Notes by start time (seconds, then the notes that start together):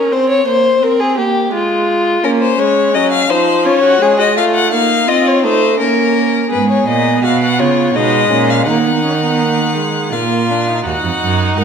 Already playing: C#4 A#4
0.12 C4 C5
0.29 C#5
0.47 A#3 C5
0.82 C4 A#4
1.00 G#4
1.17 A#3 G4
1.52 G#3 F4
2.24 A#3 C#4 A#4
2.41 C5
2.59 G#3 C#5
2.94 F#3 C#4 D#5
3.12 F5
3.30 F3 D#4 C5
3.65 C#4 F4 C#5
3.83 F#4
4.01 G#3 G#4
4.19 F#4 D#5
4.36 A3 F4 F5
4.55 F#5
4.72 A#3 D#4 F5
5.07 C4 F4 D#5
5.27 C#5
5.43 A3 D#4 C5
5.78 A#3 C#4 A#4
6.51 G#2 B3 G#4 B4
6.70 C#5
6.87 A#2 D#5
7.23 B2 F#4 F5
7.42 F#5
7.58 C#3 F4 C#5
7.94 B2 G#3 D#4 D#5
8.30 A#2 C#4
8.50 F5
8.67 D#3 A#3 D#4 F#5
8.86 B3
9.04 C#4
9.22 B3
9.40 A#3
9.76 G#3
10.12 A#2 A#3 F4 F5
10.50 D4
10.68 D#4
10.85 D#2 D#4 F#4 F#5
11.04 F2
11.21 F#2
11.57 G#2 A#4 F#5